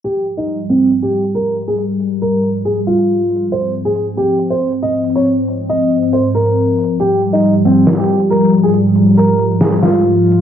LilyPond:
<<
  \new Staff \with { instrumentName = "Grand piano" } { \time 4/4 \key f \minor \tempo 4 = 138 g'8 r16 ees'8 r16 c'8 r16 g'8 r16 bes'8 r16 aes'16 | r4 bes'8 r8 aes'16 r16 f'4~ f'16 r16 | c''8 r16 aes'8 r16 g'8 r16 c''8 r16 ees''8 r16 des''16 | r4 ees''8 r8 c''16 r16 bes'4~ bes'16 r16 |
g'8 r16 ees'8 r16 c'8 r16 g'8 r16 bes'8 r16 aes'16 | r4 bes'8 r8 aes'16 r16 f'4~ f'16 r16 | }
  \new Staff \with { instrumentName = "Analog synth pad" } { \clef bass \time 4/4 \key f \minor << { g1~ | g1 | c'1~ | c'1 |
g1~ | g1 | } \\ { <aes, f>1~ | <aes, f>1~ | <aes, f>1~ | <aes, f>1~ |
<aes, f>1~ | <aes, f>1 | } >> }
  \new DrumStaff \with { instrumentName = "Drums" } \drummode { \time 4/4 hh8 hh8 hh8 hh8 hh8 hh16 hh16 r8 hh32 hh16. | hh8 hh8 hh8 hh8 hh8 hh16 hh16 r8 hh32 hh16. | hh8 hh8 hh8 hh8 hh8 hh16 hh16 r8 hh32 hh16. | hh8 hh8 hh8 hh8 hh8 hh16 hh16 r8 hh32 hh16. |
hh8 hh8 hh8 hh8 <hh sn>8 hh16 hh16 r8 hh32 hh16. | hh8 hh8 hh8 hh8 <hh sn>8 <hh sn>16 hh16 r8 hh32 hh16. | }
>>